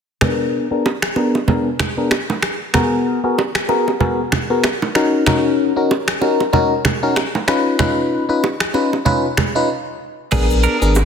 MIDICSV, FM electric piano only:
0, 0, Header, 1, 2, 480
1, 0, Start_track
1, 0, Tempo, 631579
1, 163, Time_signature, 4, 2, 24, 8
1, 8398, End_track
2, 0, Start_track
2, 0, Title_t, "FM electric piano"
2, 0, Program_c, 0, 5
2, 160, Note_on_c, 0, 59, 84
2, 162, Note_on_c, 0, 62, 76
2, 163, Note_on_c, 0, 68, 78
2, 165, Note_on_c, 0, 70, 96
2, 507, Note_off_c, 0, 59, 0
2, 508, Note_off_c, 0, 62, 0
2, 509, Note_off_c, 0, 68, 0
2, 510, Note_off_c, 0, 70, 0
2, 539, Note_on_c, 0, 59, 70
2, 540, Note_on_c, 0, 62, 67
2, 542, Note_on_c, 0, 68, 61
2, 543, Note_on_c, 0, 70, 77
2, 666, Note_off_c, 0, 59, 0
2, 667, Note_off_c, 0, 62, 0
2, 668, Note_off_c, 0, 68, 0
2, 669, Note_off_c, 0, 70, 0
2, 880, Note_on_c, 0, 59, 69
2, 882, Note_on_c, 0, 62, 65
2, 883, Note_on_c, 0, 68, 63
2, 885, Note_on_c, 0, 70, 81
2, 1039, Note_off_c, 0, 59, 0
2, 1040, Note_off_c, 0, 62, 0
2, 1041, Note_off_c, 0, 68, 0
2, 1041, Note_off_c, 0, 70, 0
2, 1120, Note_on_c, 0, 59, 86
2, 1122, Note_on_c, 0, 62, 83
2, 1123, Note_on_c, 0, 68, 81
2, 1125, Note_on_c, 0, 70, 97
2, 1279, Note_off_c, 0, 59, 0
2, 1280, Note_off_c, 0, 62, 0
2, 1281, Note_off_c, 0, 68, 0
2, 1281, Note_off_c, 0, 70, 0
2, 1499, Note_on_c, 0, 59, 75
2, 1500, Note_on_c, 0, 62, 70
2, 1502, Note_on_c, 0, 68, 67
2, 1503, Note_on_c, 0, 70, 78
2, 1627, Note_off_c, 0, 59, 0
2, 1627, Note_off_c, 0, 62, 0
2, 1628, Note_off_c, 0, 68, 0
2, 1629, Note_off_c, 0, 70, 0
2, 2080, Note_on_c, 0, 59, 82
2, 2081, Note_on_c, 0, 66, 76
2, 2083, Note_on_c, 0, 68, 77
2, 2084, Note_on_c, 0, 70, 95
2, 2427, Note_off_c, 0, 59, 0
2, 2428, Note_off_c, 0, 66, 0
2, 2428, Note_off_c, 0, 68, 0
2, 2429, Note_off_c, 0, 70, 0
2, 2459, Note_on_c, 0, 59, 72
2, 2461, Note_on_c, 0, 66, 66
2, 2462, Note_on_c, 0, 68, 63
2, 2464, Note_on_c, 0, 70, 78
2, 2587, Note_off_c, 0, 59, 0
2, 2588, Note_off_c, 0, 66, 0
2, 2588, Note_off_c, 0, 68, 0
2, 2589, Note_off_c, 0, 70, 0
2, 2801, Note_on_c, 0, 59, 72
2, 2802, Note_on_c, 0, 66, 66
2, 2803, Note_on_c, 0, 68, 67
2, 2805, Note_on_c, 0, 70, 78
2, 2959, Note_off_c, 0, 59, 0
2, 2960, Note_off_c, 0, 66, 0
2, 2961, Note_off_c, 0, 68, 0
2, 2961, Note_off_c, 0, 70, 0
2, 3040, Note_on_c, 0, 59, 88
2, 3042, Note_on_c, 0, 66, 83
2, 3043, Note_on_c, 0, 68, 82
2, 3045, Note_on_c, 0, 70, 99
2, 3199, Note_off_c, 0, 59, 0
2, 3200, Note_off_c, 0, 66, 0
2, 3201, Note_off_c, 0, 68, 0
2, 3201, Note_off_c, 0, 70, 0
2, 3419, Note_on_c, 0, 59, 76
2, 3421, Note_on_c, 0, 66, 69
2, 3422, Note_on_c, 0, 68, 66
2, 3424, Note_on_c, 0, 70, 79
2, 3547, Note_off_c, 0, 59, 0
2, 3547, Note_off_c, 0, 66, 0
2, 3548, Note_off_c, 0, 68, 0
2, 3549, Note_off_c, 0, 70, 0
2, 3760, Note_on_c, 0, 61, 87
2, 3762, Note_on_c, 0, 63, 84
2, 3763, Note_on_c, 0, 66, 78
2, 3765, Note_on_c, 0, 70, 98
2, 3985, Note_off_c, 0, 61, 0
2, 3986, Note_off_c, 0, 63, 0
2, 3987, Note_off_c, 0, 66, 0
2, 3988, Note_off_c, 0, 70, 0
2, 4000, Note_on_c, 0, 61, 90
2, 4001, Note_on_c, 0, 63, 81
2, 4003, Note_on_c, 0, 66, 78
2, 4005, Note_on_c, 0, 70, 95
2, 4347, Note_off_c, 0, 61, 0
2, 4348, Note_off_c, 0, 63, 0
2, 4349, Note_off_c, 0, 66, 0
2, 4349, Note_off_c, 0, 70, 0
2, 4379, Note_on_c, 0, 61, 70
2, 4381, Note_on_c, 0, 63, 63
2, 4383, Note_on_c, 0, 66, 68
2, 4384, Note_on_c, 0, 70, 77
2, 4507, Note_off_c, 0, 61, 0
2, 4508, Note_off_c, 0, 63, 0
2, 4508, Note_off_c, 0, 66, 0
2, 4509, Note_off_c, 0, 70, 0
2, 4721, Note_on_c, 0, 61, 71
2, 4722, Note_on_c, 0, 63, 64
2, 4724, Note_on_c, 0, 66, 63
2, 4725, Note_on_c, 0, 70, 80
2, 4879, Note_off_c, 0, 61, 0
2, 4880, Note_off_c, 0, 63, 0
2, 4881, Note_off_c, 0, 66, 0
2, 4881, Note_off_c, 0, 70, 0
2, 4960, Note_on_c, 0, 61, 92
2, 4962, Note_on_c, 0, 63, 82
2, 4963, Note_on_c, 0, 66, 84
2, 4965, Note_on_c, 0, 70, 100
2, 5119, Note_off_c, 0, 61, 0
2, 5120, Note_off_c, 0, 63, 0
2, 5121, Note_off_c, 0, 66, 0
2, 5121, Note_off_c, 0, 70, 0
2, 5339, Note_on_c, 0, 61, 74
2, 5341, Note_on_c, 0, 63, 70
2, 5343, Note_on_c, 0, 66, 68
2, 5344, Note_on_c, 0, 70, 81
2, 5467, Note_off_c, 0, 61, 0
2, 5468, Note_off_c, 0, 63, 0
2, 5468, Note_off_c, 0, 66, 0
2, 5469, Note_off_c, 0, 70, 0
2, 5680, Note_on_c, 0, 61, 86
2, 5682, Note_on_c, 0, 63, 79
2, 5683, Note_on_c, 0, 65, 81
2, 5685, Note_on_c, 0, 71, 96
2, 5905, Note_off_c, 0, 61, 0
2, 5906, Note_off_c, 0, 63, 0
2, 5907, Note_off_c, 0, 65, 0
2, 5908, Note_off_c, 0, 71, 0
2, 5920, Note_on_c, 0, 61, 83
2, 5921, Note_on_c, 0, 63, 79
2, 5923, Note_on_c, 0, 65, 80
2, 5925, Note_on_c, 0, 71, 96
2, 6267, Note_off_c, 0, 61, 0
2, 6268, Note_off_c, 0, 63, 0
2, 6269, Note_off_c, 0, 65, 0
2, 6269, Note_off_c, 0, 71, 0
2, 6299, Note_on_c, 0, 61, 72
2, 6300, Note_on_c, 0, 63, 66
2, 6302, Note_on_c, 0, 65, 65
2, 6303, Note_on_c, 0, 71, 76
2, 6426, Note_off_c, 0, 61, 0
2, 6427, Note_off_c, 0, 63, 0
2, 6428, Note_off_c, 0, 65, 0
2, 6429, Note_off_c, 0, 71, 0
2, 6641, Note_on_c, 0, 61, 72
2, 6642, Note_on_c, 0, 63, 65
2, 6643, Note_on_c, 0, 65, 65
2, 6645, Note_on_c, 0, 71, 79
2, 6799, Note_off_c, 0, 61, 0
2, 6800, Note_off_c, 0, 63, 0
2, 6801, Note_off_c, 0, 65, 0
2, 6801, Note_off_c, 0, 71, 0
2, 6880, Note_on_c, 0, 61, 94
2, 6881, Note_on_c, 0, 63, 84
2, 6883, Note_on_c, 0, 65, 84
2, 6885, Note_on_c, 0, 71, 98
2, 7039, Note_off_c, 0, 61, 0
2, 7040, Note_off_c, 0, 63, 0
2, 7040, Note_off_c, 0, 65, 0
2, 7041, Note_off_c, 0, 71, 0
2, 7260, Note_on_c, 0, 61, 73
2, 7261, Note_on_c, 0, 63, 70
2, 7263, Note_on_c, 0, 65, 65
2, 7264, Note_on_c, 0, 71, 83
2, 7362, Note_off_c, 0, 61, 0
2, 7362, Note_off_c, 0, 63, 0
2, 7363, Note_off_c, 0, 65, 0
2, 7364, Note_off_c, 0, 71, 0
2, 7840, Note_on_c, 0, 59, 84
2, 7841, Note_on_c, 0, 62, 77
2, 7843, Note_on_c, 0, 68, 78
2, 7844, Note_on_c, 0, 70, 99
2, 8187, Note_off_c, 0, 59, 0
2, 8188, Note_off_c, 0, 62, 0
2, 8189, Note_off_c, 0, 68, 0
2, 8189, Note_off_c, 0, 70, 0
2, 8219, Note_on_c, 0, 59, 71
2, 8221, Note_on_c, 0, 62, 67
2, 8222, Note_on_c, 0, 68, 69
2, 8224, Note_on_c, 0, 70, 79
2, 8347, Note_off_c, 0, 59, 0
2, 8348, Note_off_c, 0, 62, 0
2, 8348, Note_off_c, 0, 68, 0
2, 8349, Note_off_c, 0, 70, 0
2, 8398, End_track
0, 0, End_of_file